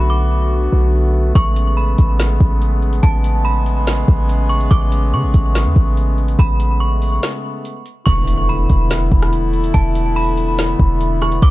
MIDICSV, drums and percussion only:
0, 0, Header, 1, 2, 480
1, 0, Start_track
1, 0, Key_signature, 3, "major"
1, 0, Tempo, 419580
1, 1549, Time_signature, 4, 2, 24, 8
1, 13162, End_track
2, 0, Start_track
2, 0, Title_t, "Drums"
2, 1548, Note_on_c, 9, 42, 75
2, 1549, Note_on_c, 9, 36, 110
2, 1662, Note_off_c, 9, 42, 0
2, 1663, Note_off_c, 9, 36, 0
2, 1789, Note_on_c, 9, 42, 85
2, 1903, Note_off_c, 9, 42, 0
2, 2268, Note_on_c, 9, 42, 63
2, 2272, Note_on_c, 9, 36, 84
2, 2383, Note_off_c, 9, 42, 0
2, 2387, Note_off_c, 9, 36, 0
2, 2509, Note_on_c, 9, 42, 86
2, 2513, Note_on_c, 9, 38, 112
2, 2624, Note_off_c, 9, 42, 0
2, 2627, Note_off_c, 9, 38, 0
2, 2751, Note_on_c, 9, 36, 99
2, 2865, Note_off_c, 9, 36, 0
2, 2994, Note_on_c, 9, 42, 68
2, 3108, Note_off_c, 9, 42, 0
2, 3230, Note_on_c, 9, 42, 38
2, 3344, Note_off_c, 9, 42, 0
2, 3350, Note_on_c, 9, 42, 62
2, 3464, Note_off_c, 9, 42, 0
2, 3469, Note_on_c, 9, 36, 112
2, 3469, Note_on_c, 9, 42, 74
2, 3583, Note_off_c, 9, 36, 0
2, 3583, Note_off_c, 9, 42, 0
2, 3709, Note_on_c, 9, 42, 86
2, 3824, Note_off_c, 9, 42, 0
2, 4189, Note_on_c, 9, 42, 61
2, 4303, Note_off_c, 9, 42, 0
2, 4429, Note_on_c, 9, 42, 86
2, 4432, Note_on_c, 9, 38, 109
2, 4543, Note_off_c, 9, 42, 0
2, 4546, Note_off_c, 9, 38, 0
2, 4670, Note_on_c, 9, 36, 104
2, 4785, Note_off_c, 9, 36, 0
2, 4913, Note_on_c, 9, 42, 69
2, 5027, Note_off_c, 9, 42, 0
2, 5148, Note_on_c, 9, 42, 37
2, 5263, Note_off_c, 9, 42, 0
2, 5268, Note_on_c, 9, 42, 63
2, 5383, Note_off_c, 9, 42, 0
2, 5388, Note_on_c, 9, 36, 108
2, 5388, Note_on_c, 9, 42, 72
2, 5502, Note_off_c, 9, 36, 0
2, 5503, Note_off_c, 9, 42, 0
2, 5630, Note_on_c, 9, 42, 91
2, 5744, Note_off_c, 9, 42, 0
2, 6109, Note_on_c, 9, 42, 63
2, 6112, Note_on_c, 9, 36, 86
2, 6224, Note_off_c, 9, 42, 0
2, 6227, Note_off_c, 9, 36, 0
2, 6350, Note_on_c, 9, 42, 85
2, 6353, Note_on_c, 9, 38, 109
2, 6464, Note_off_c, 9, 42, 0
2, 6467, Note_off_c, 9, 38, 0
2, 6591, Note_on_c, 9, 36, 102
2, 6705, Note_off_c, 9, 36, 0
2, 6833, Note_on_c, 9, 42, 67
2, 6947, Note_off_c, 9, 42, 0
2, 7069, Note_on_c, 9, 42, 38
2, 7184, Note_off_c, 9, 42, 0
2, 7188, Note_on_c, 9, 42, 64
2, 7303, Note_off_c, 9, 42, 0
2, 7308, Note_on_c, 9, 36, 107
2, 7308, Note_on_c, 9, 42, 71
2, 7422, Note_off_c, 9, 42, 0
2, 7423, Note_off_c, 9, 36, 0
2, 7549, Note_on_c, 9, 42, 85
2, 7664, Note_off_c, 9, 42, 0
2, 8030, Note_on_c, 9, 46, 50
2, 8144, Note_off_c, 9, 46, 0
2, 8270, Note_on_c, 9, 42, 83
2, 8273, Note_on_c, 9, 38, 114
2, 8384, Note_off_c, 9, 42, 0
2, 8388, Note_off_c, 9, 38, 0
2, 8753, Note_on_c, 9, 42, 71
2, 8867, Note_off_c, 9, 42, 0
2, 8988, Note_on_c, 9, 42, 61
2, 9102, Note_off_c, 9, 42, 0
2, 9228, Note_on_c, 9, 36, 111
2, 9228, Note_on_c, 9, 42, 77
2, 9342, Note_off_c, 9, 42, 0
2, 9343, Note_off_c, 9, 36, 0
2, 9467, Note_on_c, 9, 42, 93
2, 9582, Note_off_c, 9, 42, 0
2, 9948, Note_on_c, 9, 42, 67
2, 9951, Note_on_c, 9, 36, 87
2, 10062, Note_off_c, 9, 42, 0
2, 10066, Note_off_c, 9, 36, 0
2, 10187, Note_on_c, 9, 42, 89
2, 10190, Note_on_c, 9, 38, 121
2, 10302, Note_off_c, 9, 42, 0
2, 10305, Note_off_c, 9, 38, 0
2, 10429, Note_on_c, 9, 36, 103
2, 10544, Note_off_c, 9, 36, 0
2, 10553, Note_on_c, 9, 37, 103
2, 10668, Note_off_c, 9, 37, 0
2, 10670, Note_on_c, 9, 42, 68
2, 10785, Note_off_c, 9, 42, 0
2, 10908, Note_on_c, 9, 42, 42
2, 11022, Note_off_c, 9, 42, 0
2, 11028, Note_on_c, 9, 42, 66
2, 11142, Note_off_c, 9, 42, 0
2, 11145, Note_on_c, 9, 42, 76
2, 11147, Note_on_c, 9, 36, 113
2, 11260, Note_off_c, 9, 42, 0
2, 11261, Note_off_c, 9, 36, 0
2, 11387, Note_on_c, 9, 42, 90
2, 11502, Note_off_c, 9, 42, 0
2, 11868, Note_on_c, 9, 42, 69
2, 11982, Note_off_c, 9, 42, 0
2, 12109, Note_on_c, 9, 42, 90
2, 12112, Note_on_c, 9, 38, 110
2, 12223, Note_off_c, 9, 42, 0
2, 12226, Note_off_c, 9, 38, 0
2, 12350, Note_on_c, 9, 36, 107
2, 12464, Note_off_c, 9, 36, 0
2, 12592, Note_on_c, 9, 42, 74
2, 12707, Note_off_c, 9, 42, 0
2, 12829, Note_on_c, 9, 42, 39
2, 12837, Note_on_c, 9, 37, 89
2, 12944, Note_off_c, 9, 42, 0
2, 12949, Note_on_c, 9, 42, 66
2, 12951, Note_off_c, 9, 37, 0
2, 13063, Note_off_c, 9, 42, 0
2, 13068, Note_on_c, 9, 36, 117
2, 13068, Note_on_c, 9, 42, 76
2, 13162, Note_off_c, 9, 36, 0
2, 13162, Note_off_c, 9, 42, 0
2, 13162, End_track
0, 0, End_of_file